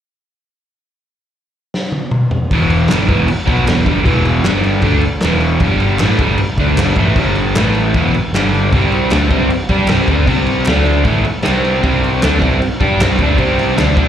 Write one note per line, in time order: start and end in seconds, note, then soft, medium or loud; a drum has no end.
1.74 snare medium
1.92 high tom medium
2.11 mid tom medium
2.31 floor tom loud
2.51 2.87 E1 medium
2.51 2.89 E2 medium
2.51 2.91 B2 loud
2.51 2.91 E3 loud
2.51 kick loud
2.51 crash medium
2.70 crash medium
2.88 3.08 G1 medium
2.88 3.08 G2 medium
2.88 3.08 D3 loud
2.88 3.09 G3 loud
2.88 snare loud
2.88 clap medium
2.88 crash medium
3.00 snare soft
3.08 3.28 E1 loud
3.08 3.26 E2 medium
3.08 3.28 B2 loud
3.08 3.28 E3 loud
3.08 kick loud
3.08 crash medium
3.27 muted overdriven electric guitar stroke medium
3.27 muted picked electric bass stroke soft
3.27 crash medium
3.46 3.66 B1 loud
3.46 3.64 B2 loud
3.46 3.66 F#3 medium
3.46 3.67 B3 loud
3.46 kick loud
3.46 crash medium
3.65 3.86 E1 loud
3.65 3.85 E2 medium
3.65 3.85 B2 loud
3.65 3.86 E3 loud
3.65 snare loud
3.65 clap medium
3.65 crash medium
3.85 4.04 G1 loud
3.85 4.04 G2 medium
3.85 4.04 D3 medium
3.85 4.06 G3 loud
3.85 kick loud
3.85 crash medium
4.04 4.42 E1 medium
4.04 4.44 E2 loud
4.04 4.44 B2 loud
4.04 4.45 E3 loud
4.04 kick loud
4.04 crash medium
4.25 crash medium
4.43 4.80 G1 medium
4.43 4.83 G2 loud
4.43 4.82 D3 loud
4.43 snare loud
4.43 clap medium
4.43 crash medium
4.47 4.83 G3 loud
4.54 snare soft
4.64 crash medium
4.82 5.01 D2 loud
4.82 5.02 D3 medium
4.82 5.03 A3 loud
4.82 5.03 D4 loud
4.82 kick loud
4.82 crash medium
5.01 muted picked electric bass stroke soft
5.01 muted overdriven electric guitar stroke medium
5.01 crash medium
5.21 5.59 E1 loud
5.21 5.62 E2 medium
5.21 snare loud
5.21 clap medium
5.21 crash medium
5.25 5.62 B2 loud
5.25 5.63 E3 loud
5.41 crash medium
5.60 5.97 G1 medium
5.60 6.00 G2 loud
5.60 6.01 D3 medium
5.60 kick loud
5.60 crash medium
5.64 6.01 G3 loud
5.80 crash medium
5.98 6.17 A1 loud
5.98 6.20 A2 loud
5.98 snare loud
5.98 clap loud
5.98 crash medium
6.02 6.20 E3 loud
6.02 6.21 A3 loud
6.10 snare soft
6.18 6.38 G1 loud
6.18 6.38 G2 loud
6.18 6.39 D3 loud
6.18 6.39 G3 loud
6.18 kick loud
6.18 crash medium
6.38 muted overdriven electric guitar stroke medium
6.38 crash medium
6.57 6.76 D2 loud
6.57 6.78 D3 loud
6.57 6.78 A3 loud
6.57 6.79 D4 loud
6.57 kick loud
6.57 crash medium
6.77 6.96 G1 loud
6.77 6.98 G2 loud
6.77 snare loud
6.77 clap loud
6.77 crash medium
6.81 6.97 D3 loud
6.81 6.98 G3 loud
6.96 7.16 A1 loud
6.96 7.16 A2 medium
6.96 7.17 E3 loud
6.96 7.17 A3 loud
6.96 kick loud
6.96 crash medium
7.16 7.53 G1 medium
7.16 7.56 G2 loud
7.16 7.56 D3 loud
7.16 7.57 G3 loud
7.16 kick loud
7.16 crash medium
7.35 crash medium
7.55 7.92 A1 loud
7.55 7.95 A2 loud
7.55 7.95 E3 loud
7.55 7.96 A3 loud
7.55 snare loud
7.55 clap loud
7.55 crash medium
7.75 crash medium
7.94 8.12 E1 medium
7.94 8.14 E2 medium
7.94 8.14 B2 loud
7.94 8.15 E3 loud
7.94 kick loud
7.94 crash medium
8.12 muted picked electric bass stroke soft
8.12 muted overdriven electric guitar stroke medium
8.12 crash medium
8.33 8.69 G1 loud
8.33 8.73 G2 medium
8.33 8.73 D3 loud
8.33 8.73 G3 loud
8.33 snare loud
8.33 clap loud
8.33 crash medium
8.54 crash medium
8.73 9.09 C2 medium
8.73 9.12 C3 medium
8.73 9.12 G3 loud
8.73 9.13 C4 loud
8.73 kick loud
8.73 crash medium
8.92 crash medium
9.11 9.30 D2 medium
9.11 9.30 D3 loud
9.11 9.31 A3 loud
9.11 9.31 D4 loud
9.11 snare loud
9.11 clap medium
9.11 crash medium
9.31 9.49 C2 loud
9.31 9.50 C3 medium
9.31 9.50 G3 loud
9.31 9.50 C4 loud
9.31 kick loud
9.31 crash medium
9.50 muted overdriven electric guitar stroke medium
9.50 crash medium
9.69 9.87 G2 loud
9.69 9.87 G3 loud
9.69 9.89 D4 loud
9.69 9.90 G4 loud
9.69 kick loud
9.69 crash medium
9.88 10.07 C2 loud
9.88 10.08 C3 medium
9.88 10.08 G3 medium
9.88 10.09 C4 loud
9.88 snare loud
9.88 clap medium
9.88 crash medium
10.08 10.26 D2 loud
10.08 10.25 D3 medium
10.08 10.27 A3 loud
10.08 10.27 D4 loud
10.08 kick loud
10.08 crash medium
10.26 10.64 C2 medium
10.26 10.65 C3 medium
10.26 10.66 G3 loud
10.26 10.66 C4 loud
10.26 kick loud
10.26 crash medium
10.47 crash medium
10.65 11.04 D2 medium
10.65 11.04 D3 medium
10.65 11.04 A3 loud
10.65 11.05 D4 loud
10.65 snare loud
10.65 clap loud
10.65 crash medium
10.86 crash medium
11.04 11.23 A1 loud
11.04 11.24 A2 loud
11.04 11.25 E3 loud
11.04 11.24 A3 loud
11.04 kick loud
11.04 crash medium
11.25 muted overdriven electric guitar stroke medium
11.25 crash medium
11.43 11.81 C3 medium
11.43 11.82 G3 medium
11.43 11.81 C4 loud
11.43 snare loud
11.43 clap loud
11.43 crash medium
11.47 11.82 C2 loud
11.65 crash medium
11.82 12.20 C2 loud
11.82 12.21 C3 medium
11.82 12.21 G3 loud
11.82 12.21 C4 loud
11.82 kick loud
11.82 crash medium
12.04 crash medium
12.22 12.41 D2 loud
12.22 12.38 D3 loud
12.22 12.39 A3 loud
12.22 12.40 D4 loud
12.22 snare loud
12.22 clap loud
12.22 crash medium
12.34 snare soft
12.38 12.60 C2 loud
12.38 12.59 C3 loud
12.38 12.59 G3 loud
12.38 12.60 C4 medium
12.38 kick loud
12.42 crash medium
12.61 muted overdriven electric guitar stroke medium
12.61 muted picked electric bass stroke soft
12.61 crash medium
12.80 12.99 G2 loud
12.80 12.99 G3 loud
12.80 12.99 D4 loud
12.80 13.00 G4 loud
12.80 kick loud
12.80 crash medium
12.99 13.18 C2 loud
12.99 13.18 C3 medium
12.99 13.19 G3 loud
12.99 13.19 C4 loud
12.99 snare loud
12.99 clap loud
12.99 crash medium
13.19 13.37 D2 loud
13.19 13.37 D3 medium
13.19 13.38 A3 medium
13.19 13.39 D4 loud
13.19 kick loud
13.19 crash medium
13.37 13.74 C2 medium
13.37 13.76 C3 medium
13.37 13.76 G3 loud
13.37 13.77 C4 loud
13.37 kick loud
13.37 crash medium
13.59 crash medium
13.76 13.95 D2 medium
13.76 13.94 D3 loud
13.76 13.95 A3 loud
13.76 13.96 D4 loud
13.76 snare loud
13.76 clap loud
13.76 crash medium
13.96 14.08 D2 medium
13.96 14.08 D3 medium
13.96 14.08 A3 medium
13.96 14.08 D4 loud
13.96 kick loud
13.96 crash medium